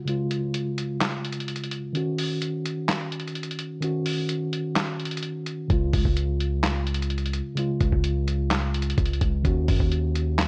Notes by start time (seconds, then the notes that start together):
Already playing: C#3 G#3 F4
0.05 C#3 G#3 F4, closed hi-hat
0.31 closed hi-hat
0.54 closed hi-hat
0.78 closed hi-hat
1.01 snare, clap, closed hi-hat
1.25 closed hi-hat
1.32 closed hi-hat
1.40 closed hi-hat
1.48 closed hi-hat
1.56 closed hi-hat
1.64 closed hi-hat
1.71 closed hi-hat
1.93 D#3 C#4, closed hi-hat
1.97 F#4
2.18 open hi-hat
2.42 closed hi-hat
2.65 closed hi-hat
2.89 snare, clap, closed hi-hat
3.12 closed hi-hat
3.20 closed hi-hat
3.28 closed hi-hat
3.36 closed hi-hat
3.43 closed hi-hat
3.51 closed hi-hat
3.59 closed hi-hat
3.80 D#3 C#4 F#4, closed hi-hat
4.06 open hi-hat
4.29 closed hi-hat
4.53 closed hi-hat
4.76 snare, clap, closed hi-hat
5.00 closed hi-hat
5.05 closed hi-hat
5.11 closed hi-hat
5.17 closed hi-hat
5.23 closed hi-hat
5.46 closed hi-hat
5.68 C#2 C#3 G#3 F4, kick, closed hi-hat
5.93 C#2, kick, open hi-hat
6.05 C#2, kick
6.16 closed hi-hat
6.40 closed hi-hat
6.64 snare, clap, closed hi-hat
6.87 closed hi-hat
6.95 closed hi-hat
7.03 closed hi-hat
7.10 closed hi-hat
7.18 closed hi-hat
7.26 closed hi-hat
7.34 closed hi-hat
7.55 C#3 G#3, closed hi-hat
7.59 F4
7.81 C#2, kick, closed hi-hat
7.92 C#2, kick
8.04 closed hi-hat
8.28 closed hi-hat
8.51 snare, clap, closed hi-hat
8.74 closed hi-hat
8.82 closed hi-hat
8.90 closed hi-hat
8.98 C#2, kick, closed hi-hat
9.06 closed hi-hat
9.13 closed hi-hat
9.21 C#2, kick, closed hi-hat
9.43 D#2 D#3 C#4 F#4, kick, closed hi-hat
9.68 F#2, kick, open hi-hat
9.80 D#2, kick
9.92 closed hi-hat
10.15 closed hi-hat
10.39 snare, clap, closed hi-hat